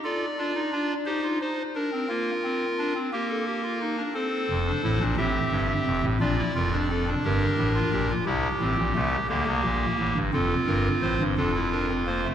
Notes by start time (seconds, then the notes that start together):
0.04 F4 A4 D5
0.38 D4 F4
0.55 D#4
0.72 D4 F4
1.06 D#4 G4 C5
1.23 F4
1.41 D#4 C5
1.75 D4 A#4
1.93 C4
2.09 A#3 F4
2.44 C4
2.79 D4
2.95 C4
3.13 A#3 G4 A#4
3.30 A4
3.47 G4
3.64 F4
3.81 D#4
3.98 D4
4.14 C4 A4 C5
4.50 F1 F2
4.67 D4
4.84 A1 A2 E4
5.00 A#1 A#2 D4
5.17 A1 A2 C4 G4 E5
5.52 G1 G2
5.86 F1 F2
6.03 A1 A2
6.20 A#1 A#2 D4 F4 D5
6.38 E4
6.55 F1 F2 F4 A#4
6.73 D4
6.90 C4 A4
7.08 D4
7.24 G1 G2 G4 A#4
7.58 A1 A2
7.75 F4
7.92 A#1 A#2 G4
8.10 F4
8.26 C2 C3 E4 G4
8.61 A1 A2 C4
8.78 A#1 A#2
8.95 C2 C3 A3
9.29 D2 D3 A#3 G4
9.46 C2 C3
9.64 A#1 A#2
9.99 A1 A2
10.16 G1 G2
10.33 F1 F2 C4 F4 A4
10.67 G1 G2 A#4
11.02 A1 A2 C5
11.20 G1 G2
11.37 F1 F2 D4 F4 A4
11.55 E4
11.72 D4 A#4
11.89 C4
12.07 A#3 C5
12.24 A3